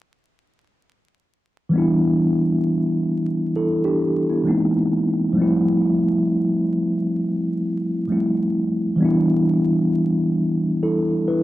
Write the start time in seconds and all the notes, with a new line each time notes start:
1.69 E3 G3
1.74 B3 D4
1.78 E4
3.56 E4 A4
3.84 D4 G4
4.30 B3 E4
4.44 E3 G#3 A#3 C4
4.48 D#4
5.33 F3 G3
5.37 A3 C4
5.42 E4
8.08 F3 G3 A3 C4
8.12 E4
8.96 E3 G3
9.01 B3 D4
9.05 E4
10.83 E4 A4
11.28 E4 B4